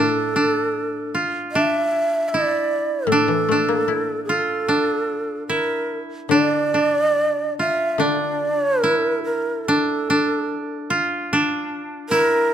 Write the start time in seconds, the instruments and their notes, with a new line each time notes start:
Already playing: koto A2 D4 E4, shakuhachi A4
0.36 koto D4
1.15 koto F4
1.52 koto D4, shakuhachi E5
2.29 shakuhachi D5
2.34 koto E4
3.07 koto A2, shakuhachi A4
3.12 koto D4
3.28 koto E3
3.49 koto A3 D4
3.68 koto A#3
3.88 koto E4
4.25 shakuhachi A4
4.29 koto F4
4.68 koto D4
5.48 koto E4, shakuhachi A#4
6.29 koto D3 D4, shakuhachi D5
6.74 koto D4
7.59 koto F4, shakuhachi E5
7.98 koto D3 D4, shakuhachi D5
8.84 koto E4, shakuhachi A#4
9.24 shakuhachi A#4
9.65 koto D4, shakuhachi A4
10.10 koto D4
10.90 koto F4
11.33 koto D4
12.09 koto E4, shakuhachi A#4